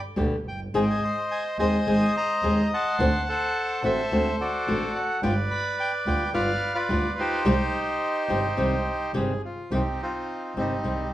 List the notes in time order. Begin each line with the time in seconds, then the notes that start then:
0.16 D2 B2 D3 G3 B3 G4
0.46 F#1 G5
0.73 G#1 D#3 G#3 C4 G#4 C5 D#5 G#5
0.82 G5
0.90 G#5
1.04 C6
1.31 G#5
1.58 D#2 D#3 G#3 C4 G#4 C5 D#5 G#5
1.87 G#1 D#3 G#3 C4 G#4
2.17 D#5 A#5
2.42 D#2 D#3 G#3 C4 G#4
2.74 F#5 A5 C6
2.99 D2 D3 A3 C4 F#4
3.29 A4 C5 F#5
3.83 A1 D3 A3 C4 F#4 A4 C5 E5
4.11 D2 D3 A3 C4 F#4
4.41 F#4 A4 D5
4.68 A1 D3 A3 C4 F#4
4.96 F#5
5.23 G1 G3 B3 F4 B4 D5 G5
5.51 B5
5.80 G5
6.06 D2 G3 B3 F4 G5
6.33 G1 G3 B3 F4 B4 D5 F5
6.75 F4 B4 D5
6.89 D2 G3 B3 F4
7.19 D#4 G4 C5
7.45 C2 C3 D#3 G3 C4 G4
8.29 G1 C3 D#3 G3 C4 G4
8.57 C2 C3 D#3 G3 C4 G4
9.14 G1 C3 D#3 G3 C4 G4 G#4
9.45 F4
9.71 C2 C3 D#3 G3 C4 D#4 G4
10.02 C4 F4
10.55 G1 C3 D#3 G3 C4 D#4 G4
10.84 C2 C3 D#3 G3 C4 G4